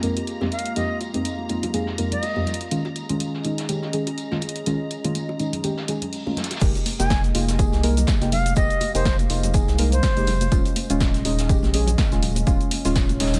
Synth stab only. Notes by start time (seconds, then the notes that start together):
0.03 F2 G#3 A#3 C4 D#4 A#4
0.41 F2 G#3 A#3 C4 D#4 G4
0.76 F2 G#3 A#3 C4 D#4 G4
1.14 F2 G#3 A#3 C4 D#4 G4
1.49 F2 G#3 A#3 C4 D#4 F4
1.74 F2 G#3 A#3 C4 D#4 G#4
1.98 F2 G#3 A#3 C4 D#4 A#4
2.36 F2 G#3 A#3 C4 D#4 G4
2.71 D#3 G#3 C#4 F4
3.09 D#3 G#3 C#4 F4
3.44 D#3 G#3 C#4 D#4
3.69 D#3 G#3 C#4 G4
3.93 D#3 G#3 C#4 G#4
4.31 D#3 G#3 C#4 F4
4.66 D#3 G#3 C#4 F4
5.04 D#3 G#3 C#4 F4
5.39 D#3 G#3 C#4 D#4
5.64 D#3 G#3 C#4 G4
5.88 D#3 G#3 C#4 G#4
6.26 D#3 G#3 C#4 F4
6.61 G#3 A#3 D#4 G4
6.99 G#3 A#3 D#4 G4
7.34 G#3 A#3 D#4 F4
7.59 G#3 A#3 D#4 G#4
7.83 G#3 A#3 D#4 A#4
8.21 G#3 A#3 D#4 G4
8.56 G#3 A#3 D#4 G4
8.94 G#3 A#3 D#4 G4
9.30 G#3 A#3 D#4 F4
9.54 G#3 A#3 D#4 G#4
9.79 G#3 A#3 D#4 A#4
10.16 G#3 A#3 D#4 G4
10.52 G#3 C#4 F4
10.90 G#3 C#4 F4
11.25 G#3 C#4 D#4
11.49 G#3 C#4 G4
11.74 G#3 C#4 G#4
12.12 G#3 C#4 F4
12.47 G#3 C#4 F4
12.85 G#3 C#4 F4
13.20 G#3 C#4 D#4